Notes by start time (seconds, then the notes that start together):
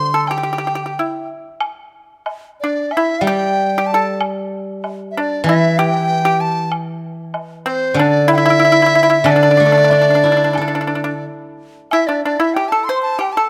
Already playing: D3 C6
0.14 A4
0.27 G4 G5, high woodblock
0.38 G4
0.43 G4
0.53 G4
0.58 G4
0.67 G4
0.75 G4
0.86 G4
0.99 E4
1.60 high woodblock
2.26 high woodblock, low woodblock
2.60 D4 D5
2.91 E5, high woodblock
2.97 E4
3.21 G3 G5
3.27 G4
3.78 G4
3.87 A5
3.94 A4
4.21 high woodblock
4.84 high woodblock, low woodblock
5.11 E5
5.16 D4 E5
5.20 D5
5.44 E3 E5, high woodblock
5.49 E4
5.78 G4 G5
6.25 G4
6.41 A5
6.72 high woodblock
7.34 high woodblock, low woodblock
7.66 C4 C5
7.94 D3, high woodblock
7.99 D4 D5
8.28 E4
8.32 E5 G5
8.38 E4
8.46 E4
8.50 E4
8.60 E4
8.65 E4
8.72 E4
8.82 E4
8.86 E4
8.95 E4
9.03 E4
9.10 E4
9.24 D3 D4 E5, high woodblock
9.31 D5
9.36 D4
9.43 D4
9.51 D4
9.57 A3 D4
9.66 D4
9.72 D4
9.77 D4
9.84 D4
9.90 D4, low woodblock
10.02 D4
10.10 D4
10.15 D4
10.24 D4 E4
10.32 D4
10.37 D4
10.44 D4
10.53 D4, high woodblock
10.57 A4
10.62 D4
10.68 D4
10.75 D4
10.81 D4
10.87 D4
10.95 D4
11.04 D4
11.91 E4 E5, high woodblock
12.07 D4 D5
12.25 D4 D5
12.40 E4 E5
12.54 G4 G5, high woodblock
12.68 A4 A5
12.84 C6
12.89 C5
13.02 A5
13.19 G4 G5, high woodblock
13.32 A5
13.37 A4